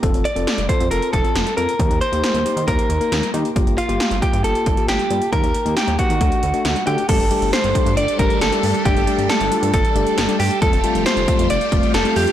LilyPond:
<<
  \new Staff \with { instrumentName = "Clean electric guitar" } { \time 4/4 \key g \minor \tempo 4 = 136 r8 d''4 c''8 bes'8 a'4 bes'8~ | bes'8 c''4. bes'4. r8 | r8 f'4 g'8 a'4 g'4 | bes'4 g'8 fis'2 g'8 |
a'4 c''4 d''8 bes'8 a'4 | g'4 a'4 a'4. g'8 | a'4 c''4 d''4 a'8 g'8 | }
  \new Staff \with { instrumentName = "String machine" } { \time 4/4 \key g \minor r1 | r1 | r1 | r1 |
<g d' a'>1~ | <g d' a'>1 | <a f' g'>1 | }
  \new Staff \with { instrumentName = "Tine electric piano" } { \time 4/4 \key g \minor <c' f' a'>8 r16 <c' f' a'>8 r16 <c' f' a'>16 r16 <c' f' a'>8 r16 <c' f' a'>8 r16 <c' f' a'>16 r16 | <bes ees' g'>8 r16 <bes ees' g'>8 r16 <bes ees' g'>16 r16 <bes ees' g'>8 r16 <bes ees' bes'>8 r16 <bes ees' g'>16 r16 | <bes f' g'>8 r16 <bes f' g'>8 r16 <bes f' g'>16 r16 <bes f' g'>8 r16 <bes f' g'>8 r16 <bes f' g'>16 r16 | <bes ees' g'>8 r16 <bes ees' g'>8 r16 <bes ees' g'>16 r16 <a d' fis'>8 r16 <a d' fis'>8 r16 <a d' fis'>16 r16 |
<g a d' g'>16 r16 <g a d' g'>8. r16 <g a d' g'>8. r16 <g a d' g'>8 r16 <g a d' g'>8 r16 | <g a d' g'>16 r16 <g a d' g'>8. r16 <g a d' f'>8. r16 <g a d' g'>8 r16 <g a d' g'>8 r16 | <g a c' f'>16 r16 <g a c' f'>8. r16 <g a c' f'>8. r16 <g a c' f'>8 r16 <g a c' f'>8 r16 | }
  \new Staff \with { instrumentName = "Analog synth bass" } { \clef bass \time 4/4 \key g \minor f,,16 f,,16 r16 f,,16 r16 f,,16 r16 f,16 f,,16 r16 f,,16 r16 f,,16 r16 f,16 r16 | ees,16 ees,16 r16 ees,16 r16 ees,16 r16 ees16 ees,16 r16 ees,16 r16 ees,16 r16 ees16 r16 | g,,16 g,,16 r16 g,,16 r16 g,,16 r16 g,16 g,,16 r16 g,,16 r16 g,,16 r16 g,16 r16 | ees,16 ees,16 r16 ees,16 r16 ees,16 r16 ees16 d,16 r16 d,16 r16 d,16 r16 d16 r16 |
g,,16 g,,16 r16 g,,16 r16 g,,16 r16 g,16 g,,16 r16 g,,16 r16 g,,16 r16 g,16 r16 | g,,16 g,,16 r16 g,,16 r16 g,,16 r16 g,16 g,,16 r16 g,,16 r16 g,,16 r16 g,16 r16 | f,,16 f,,16 r16 f,,16 r16 f,,16 r16 f,16 f,,16 r16 f,,16 r16 f,,16 r16 f,16 r16 | }
  \new DrumStaff \with { instrumentName = "Drums" } \drummode { \time 4/4 <hh bd>16 hh16 hh16 hh16 <hh sn>16 hh16 <hh bd>16 hh16 hh16 hh16 <hh bd>16 hh16 <hh sn>16 hh16 hh16 hh16 | <hh bd>16 hh16 hh16 hh16 <hh sn>16 hh16 hh16 hh16 <hh bd>16 hh16 hh16 hh16 <hh sn>16 hh16 hh16 hh16 | <hh bd>16 hh16 hh16 hh16 <hh sn>16 hh16 <hh bd>16 hh16 hh16 hh16 <hh bd>16 hh16 <hh sn>16 hh16 hh16 hh16 | <hh bd>16 hh16 hh16 hh16 <hh sn>16 hh16 <hh bd>16 hh16 <hh bd>16 hh16 hh16 hh16 <hh sn>16 hh16 hh16 hh16 |
<cymc hh bd>16 hh16 hh16 hh16 <hh sn>16 hh16 <hh bd>16 hh16 hh16 hh16 <hh bd>16 hh16 <hh sn>16 hh16 hho16 hh16 | <hh bd>16 hh16 hh16 hh16 <hh sn>16 hh16 hh16 hh16 <hh bd>16 hh16 hh16 hh16 <hh sn>16 hh16 hho16 hh16 | <hh bd>16 hh16 hh16 hh16 <hh sn>16 hh16 <hh bd>16 hh16 hh16 hh16 <hh bd>16 hh16 <hh sn>16 hh16 hho16 hh16 | }
>>